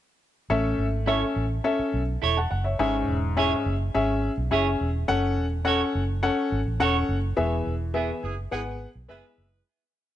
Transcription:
0.50 A1 A3 C#4 A4 E5
0.78 G#1
1.06 C#4 E4 A4 C#5 E5
1.36 A1
1.64 C#4 A4 E5
1.79 muted fingered electric bass stroke
1.94 B1
2.22 E1 E4 A4 C#5
2.37 F#5 A5
2.51 F#1 F#5
2.64 C#5 E5
2.79 G#1 G#2 C#4 G#4 E5
3.08 E1
3.37 C#4 E4 G#4 C#5 E5
3.66 F#1
3.94 G#1 C#4 G#4 E5
4.38 B1
4.51 F#1 C#4 E4 G#4 C#5 E5
4.81 E1
5.08 F#1 C#4 A4 F#5
5.38 E1
5.65 C#4 F#4 A4 C#5 F#5
5.95 F#1
6.23 C#4 A4 F#5
6.52 G#1
6.67 A1
6.80 E1 C#4 F#4 A4 C#5 F#5
7.09 F#1
7.37 E1 E3 B3 G#4 E5
7.67 E1
7.94 B3 E4 G#4 E5
8.23 F#1 E3 B3 G#4
8.51 G#1 E3 B3 G#4 F#5
8.95 B1
9.09 F#1 G#3 B3 E4 G#4 B4 E5
9.38 F#1

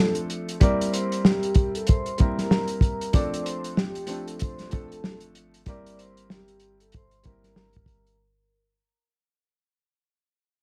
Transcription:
Already playing: F3 A3 C4 D4 A4 A5
0.15 closed hi-hat
0.30 closed hi-hat
0.49 closed hi-hat
0.60 G3 A#3 C4 E4 A#4 D5 D6, kick, closed hi-hat
0.81 closed hi-hat
0.92 C5 C6, closed hi-hat
1.12 closed hi-hat
1.25 G4 G5, snare
1.43 closed hi-hat
1.54 kick, closed hi-hat
1.75 A4 A5, closed hi-hat
1.87 C5 C6, kick, closed hi-hat
2.06 closed hi-hat
2.18 G3 A#3 C4 E4 A#4, kick, closed hi-hat
2.38 A#4 A#5, snare, closed hi-hat
2.51 snare
2.68 closed hi-hat
2.81 kick, closed hi-hat
3.01 closed hi-hat
3.13 F3 A3 C4 D4 A4 D5 D6, kick, closed hi-hat
3.34 closed hi-hat
3.43 C5 C6, closed hi-hat
3.64 closed hi-hat
3.76 G4 G5, snare
3.95 closed hi-hat
4.06 F3 A3 C4 D4 A4, closed hi-hat
4.26 A4 A5, closed hi-hat
4.39 C5 C6, kick, closed hi-hat
4.59 snare, closed hi-hat
4.69 F3 A3 C4 D4 A4, kick, closed hi-hat
4.88 A4 A5, closed hi-hat
5.04 snare
5.20 closed hi-hat
5.35 closed hi-hat
5.54 closed hi-hat
5.66 G3 A#3 C4 E4 A#4 D5 D6, kick, closed hi-hat
5.86 closed hi-hat
5.97 C5 C6, closed hi-hat
6.17 closed hi-hat
6.30 G4 G5, snare
6.48 closed hi-hat
6.60 closed hi-hat
6.80 A4 A5, closed hi-hat
6.92 C5, kick, closed hi-hat
6.96 C6
7.11 closed hi-hat
7.23 G3 A#3 C4 E4 A#4, kick, closed hi-hat
7.43 A#4 A#5, snare, closed hi-hat
7.56 snare
7.73 kick, closed hi-hat
7.86 kick, closed hi-hat
8.07 closed hi-hat

